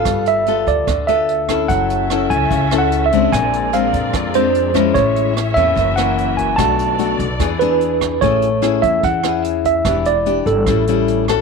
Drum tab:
HH |xxxxxxxx|xxxxxxxx|xxxxxxxx|xxxxxxxx|
SD |r---r--r|--r--r--|r---r--r|--r--r--|
BD |o--oo--o|o--oo--o|o--oo--o|o--oo--o|

HH |xxxxxxxx|xxxxxxxx|xxxxxxxx|
SD |r---r--r|--r--r--|r---r--r|
BD |o--oo--o|o--oo--o|o--oo--o|